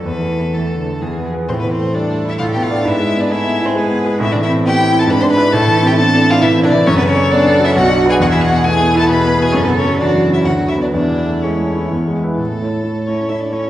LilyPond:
<<
  \new Staff \with { instrumentName = "Violin" } { \time 3/4 \key a \minor \tempo 4 = 132 b'4 a'4 r4 | c''16 b'16 c''8 d''8. e''16 f''16 g''16 f''8 | e''8. d''16 e''8. c''16 b'4 | e''16 d''16 e''8 g''8. a''16 b''16 c'''16 b''8 |
a''8. g''16 a''8. f''16 e''8 d''8 | \key a \major cis''16 b'16 cis''8 d''8. e''16 fis''8. gis''16 | fis''16 e''16 fis''8 gis''8. a''16 b''8. gis''16 | cis''16 b'16 cis''8 d''8. e''16 fis''8 e''16 d''16 |
d''4 cis''4. r8 | a'4. cis''8 e''16 d''16 cis''8 | }
  \new Staff \with { instrumentName = "Cello" } { \time 3/4 \key a \minor e4 e8 d8 e8 f8 | r4 a'2 | b'4 gis'2 | c'4 e'4 d'4 |
e'4 d'4 e'4 | \key a \major a'2 fis'4 | gis'4 e'4 gis'4 | a'4 fis'4 fis'4 |
e'2~ e'8 r8 | a4. cis'8 e'16 d'16 cis'8 | }
  \new Staff \with { instrumentName = "Violin" } { \time 3/4 \key a \minor a'2 gis'8 r8 | c'16 b16 c'8 d'8. e'16 f'16 g'16 f'8 | e'8. d'16 e'8. c'16 b4 | e'16 d'16 e'8 g'8. a'16 b'16 c''16 b'8 |
a'8. g'16 a'8. f'16 e'8 d'8 | \key a \major cis'16 b16 cis'8 d'8. e'16 fis'8. gis'16 | fis'16 e'16 fis'8 gis'8. a'16 b'8. gis'16 | cis'16 b16 cis'8 d'8. e'16 fis'8 e'16 d'16 |
d'4 cis'4. r8 | a'2. | }
  \new Staff \with { instrumentName = "Grand piano" } { \time 3/4 \key a \minor \tuplet 3/2 { e,8 a8 b8 a8 a'8 a8 e,8 b8 <gis' b'>8 } | \tuplet 3/2 { a,8 e8 a8 g8 a8 e'8 a,8 b8 <d' d''>8 } | \tuplet 3/2 { gis,8 gis8 b8 a8 b8 e'8 gis8 b8 gis8 } | \tuplet 3/2 { a,8 e8 c'8 b8 c'8 e'8 gis,8 d'8 <e' b'>8 } |
\tuplet 3/2 { a,8 e8 c'8 b8 c'8 e'8 e8 c'8 e8 } | \key a \major \tuplet 3/2 { fis,8 cis8 cis'8 b8 cis'8 fis'8 b,,8 d'8 <fis' b'>8 } | \tuplet 3/2 { e,8 b,8 b8 a8 b8 e'8 b,8 b8 b,8 } | \tuplet 3/2 { fis,8 cis8 fis8 e8 fis8 cis'8 d,8 fis8 <b b'>8 } |
\tuplet 3/2 { e,8 e8 a8 gis8 a8 e'8 e,8 gis8 <e' b'>8 } | a,8 <a e' cis''>8 <a e' cis''>8 <a e' cis''>8 <a e' cis''>8 <a e' cis''>8 | }
>>